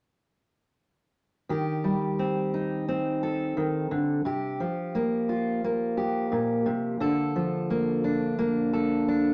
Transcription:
steel-string acoustic guitar
1.49 D#3 G4
1.84 G3
2.19 C4
2.54 D#4
2.88 C4
3.23 A4
3.57 D#3
3.91 D3
4.25 C3 G4
4.60 F3
4.95 A#3
5.29 F4
5.64 A#3
5.97 G4
6.32 A#2
6.66 C3
7.00 D3 A4
7.36 F3
7.70 A#3
8.04 D4
8.39 A#3
8.73 A4
9.08 D4

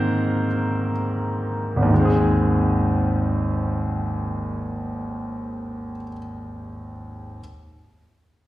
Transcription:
grand piano
Already playing: G#2 D#3 A#3 C4 A#4 C5
1.76 G#1
1.82 D#2
1.88 D#3
1.94 G#3
2.00 C4
2.05 G#4

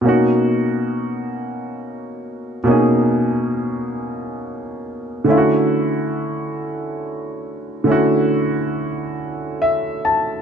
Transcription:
grand piano
0.01 B2 A#3
0.06 C#4 D#4 F#4
2.64 B2 A#3 C#4
2.69 D#4 G#4
5.24 D3 A3 C#4
5.30 E4 F4
5.38 F#4
7.84 D3 A3 C#4
7.90 E4 F#4
9.62 E5
10.05 A5

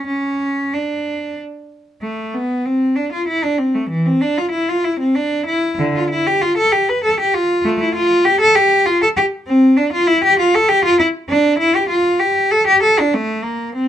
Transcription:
cello
0.07 C#4
0.74 D4
2.02 A3
2.34 B3
2.66 C4
2.96 D4
3.12 F4
3.28 E4
3.44 D4
3.58 C4
3.75 A3
3.90 E3
4.06 C4
4.21 D4
4.38 F4
4.51 E4
4.69 F4
4.84 E4
5.00 C4
5.15 D4
5.46 E4
5.78 D3
5.96 F4
6.10 E4
6.27 G4
6.42 F4
6.58 A4
6.72 G4
6.89 B4
7.04 A4
7.20 G4
7.34 F4
7.65 A3
7.80 E4
7.95 F4
8.25 G4
8.41 A4
8.55 G4
8.86 F4
9.02 A4
9.17 G4
9.47 C4
9.77 D4
9.93 F4
10.07 E4
10.24 G4
10.39 F4
10.55 A4
10.69 G4
10.85 F4
10.99 E4
11.29 D4
11.59 E4
11.75 G4
11.89 F4
12.20 G4
12.51 A4
12.67 G4
12.83 A4
12.99 D4
13.14 A3
13.44 A#3
13.75 C4

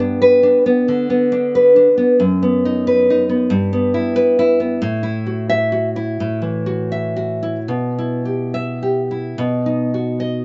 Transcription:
nylon-string guitar
Already playing: G2 B3
0.00 D4
0.22 B4
0.43 D4
0.66 B3
0.88 D3
1.10 B3
1.32 D4
1.55 B4
1.76 D4
1.98 B3
2.20 F#2
2.43 B3
2.65 D#4
2.87 B4
3.10 D#4
3.29 B3
3.50 G2
3.73 B3
3.94 E4
4.16 B4
4.39 E4
4.60 B3
4.82 A2
5.03 E4
5.27 F#4
5.50 E5
5.72 F#4
5.96 E4
6.20 A2
6.42 E3
6.66 F#4
6.92 E5
7.16 F#4
7.43 E4
7.68 B2
7.98 E4
8.25 G4
8.54 E5
8.83 G4
9.11 E4
9.38 B2
9.66 D#4
9.94 F#4
10.20 D#5

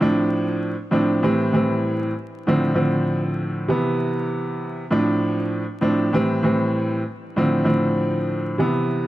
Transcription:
upright piano
0.01 A2 F3 C4 D4
0.91 A2 F3 C4 D4
1.23 A2 E3 G3 C4
1.53 A2 E3 G3 C4
2.47 A2 D3 F3 C4
2.74 A2 D3 F3 C4
3.69 C3 E3 B3
4.90 A2 F3 C4 D4
5.81 A2 F3 C4 D4
6.13 A2 E3 G3 C4
6.43 A2 E3 G3 C4
7.36 A2 D3 F3 C4
7.64 A2 D3 F3 C4
8.58 C3 E3 B3

